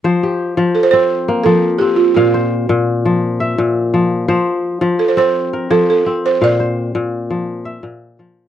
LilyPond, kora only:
<<
  \new Staff \with { instrumentName = "Kora" } { \time 12/8 \key f \major \tempo 4. = 113 c''8 g'4. r4. bes4. r4 | f''8 c''4. r4. e''4. r4 | c''4. r2 bes'4. r4 | f''8 c''4. r4. e''4. r4 | }
  \new Staff \with { instrumentName = "Kora" } { \clef bass \time 12/8 \key f \major f4 r8 f4 c'4 r8 f4 c'4 | bes,4 r8 bes,4 f4 r8 bes,4 f4 | f4 r8 f4 c'4 r8 f4 c'4 | bes,4 r8 bes,4 f4 r8 bes,4 f4 | }
>>